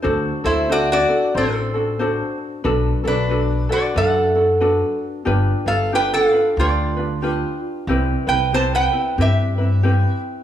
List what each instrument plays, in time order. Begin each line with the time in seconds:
0.02 upright bass D2, ukulele D4 F#4 A4 C5
0.44 upright bass D2, ukulele D4 F#4 A4, resonator guitar played with a steel bar E4 C5
0.69 ukulele D4 F#4 A4 C5, resonator guitar played with a steel bar F#4 D5
0.92 resonator guitar played with a steel bar F#4 D5
1.08 ukulele D4 F#4 A4
1.34 upright bass A1, resonator guitar played with a steel bar C4 A4, ukulele D4 F#4 A4 C5
1.74 ukulele D4 F#4 A4
1.99 ukulele D4 F#4 A4 C5
2.64 upright bass B1, ukulele D4 F#4 A4 B4
3.04 upright bass B1, ukulele D4 F#4 A4, resonator guitar played with a steel bar B4
3.08 resonator guitar played with a steel bar D4
3.30 ukulele D4 F#4 A4 B4
3.69 ukulele D4 F#4 A4, resonator guitar played with a steel bar F#4 D5
3.95 upright bass F#2, ukulele D4 F#4 A4 B4, resonator guitar played with a steel bar A4 F#5
4.35 ukulele D4 F#4 A4
4.60 ukulele D4 F#4 A4 B4
5.25 upright bass G1, ukulele D4 F4 G4 B4
5.66 upright bass G1, ukulele D4 F4 B4, resonator guitar played with a steel bar A4 F5
5.92 ukulele D4 F4 G4 B4, resonator guitar played with a steel bar B4 G5
6.13 resonator guitar played with a steel bar A4 F5
6.32 ukulele D4 F4 B4
6.57 upright bass D2, ukulele D4 F4 G4 B4, resonator guitar played with a steel bar F4 D5
6.97 ukulele D4 F4 B4
7.22 ukulele D4 F4 G4 B4
7.30 resonator guitar played with a steel bar C5
7.87 upright bass C2, ukulele C4 E4 G4 B4
8.27 upright bass C2, ukulele C4 E4 B4, resonator guitar played with a steel bar B4 G5
8.53 ukulele C4 E4 G4 B4, resonator guitar played with a steel bar C5 A5
8.75 resonator guitar played with a steel bar B4 G5
8.91 ukulele C4 E4 B4
9.18 upright bass G2, ukulele C4 E4 G4 B4, resonator guitar played with a steel bar G4
9.22 resonator guitar played with a steel bar E5
9.58 ukulele C4 E4 B4
9.83 ukulele C4 E4 G4 B4